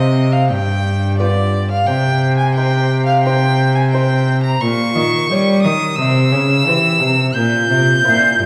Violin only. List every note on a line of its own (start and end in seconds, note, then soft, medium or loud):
0.00 0.34 D#5 loud
0.32 0.50 F5 medium
0.48 1.18 G5 loud
1.18 1.69 D5 loud
1.71 1.88 F5 loud
1.86 2.37 G5 loud
2.37 2.54 G#5 loud
2.55 3.05 G5 loud
3.06 3.23 F5 loud
3.23 3.77 G5 loud
3.75 3.90 G#5 loud
3.91 4.42 G5 loud
4.43 4.62 A#5 loud
4.61 5.62 C#6 loud
5.62 5.97 D#6 loud
5.96 7.35 E6 loud
7.34 8.46 G6 loud